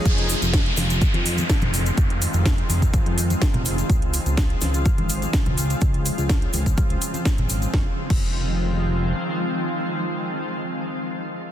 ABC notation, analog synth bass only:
X:1
M:4/4
L:1/16
Q:1/4=125
K:Fm
V:1 name="Analog synth bass" clef=bass
F,,,2 z F,,,2 z F,,,2 z F,,2 z2 F,,,2 z | F,,,2 z F,,,2 z F,,,2 z F,,2 z2 F,,,2 z | D,,2 z D,,2 z D,,2 z A,,,2 z2 D,,2 z | D,,2 z D,,2 z D,,2 z D,, z3 A,,,2 z |
F,,, z2 F,,,8- F,,, z4 | z16 |]